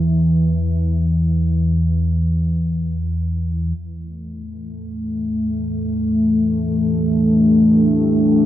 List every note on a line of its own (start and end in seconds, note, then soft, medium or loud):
0.00 3.79 E2 medium
0.00 3.77 E3 medium
3.78 8.46 E2 medium
3.78 8.46 E3 medium
3.94 8.46 A3 medium
6.10 8.46 D4 medium
6.33 8.46 G4 medium
8.14 8.46 B4 medium